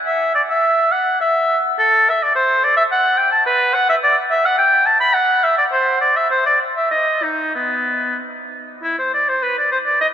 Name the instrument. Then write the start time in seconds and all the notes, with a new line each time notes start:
oboe
0.06 E5
0.35 D5
0.50 E5
0.92 F#5
1.21 E5
1.79 A4
2.09 E5
2.23 D5
2.35 C5
2.64 D5
2.77 E5
2.92 F#5
3.18 G5
3.32 A5
3.46 B4
3.74 F#5
3.89 E5
4.03 D5
4.31 E5
4.45 F#5
4.58 G5
4.86 A5
5.00 B5
5.14 F#5
5.44 E5
5.58 D5
5.72 C5
6.01 D5
6.17 E5
6.30 C5
6.46 D5
6.77 E5
6.91 D#5
7.23 D#4
7.55 B3
8.83 E4
8.99 C5
9.14 D5
9.29 C5
9.43 B4
9.58 D5
9.72 C5
9.86 D5
10.01 D#5